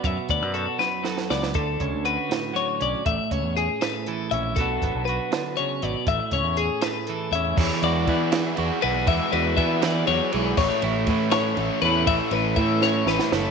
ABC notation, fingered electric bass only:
X:1
M:6/8
L:1/16
Q:3/8=80
K:A
V:1 name="Fingered electric bass" clef=bass
F,, z D,, F,,2 z4 z C,,2 | D,,2 C,, D,,2 z4 z B,,, z | A,,, z C,, E,,2 z4 z _B,,,2 | B,,,2 G,,, B,,,2 z4 z G,,, z |
A,,, z C,, E,,2 z4 z E,,2 | E,, z E,,2 E,4 E,, z B,,,2 | E,, z E,,2 E,4 E,, z B,,,2 | A,,, z A,,,2 A,,4 A,,, z E,,2 |
A,,, z A,,,2 A,,4 A,,, z F,,,2 |]